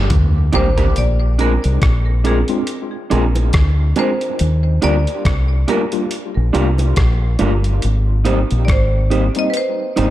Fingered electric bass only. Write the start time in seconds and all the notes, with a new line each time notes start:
0.11 D2
0.55 G#1
0.98 A#1
1.65 C2
1.83 A#1
3.12 A#1
3.55 D2
4.41 D#2
4.84 D2
5.26 C2
6.37 A#1
6.55 C2
6.98 A#1
7.41 G1
7.84 G#1
8.52 A#1
8.69 G#1
9.99 G#1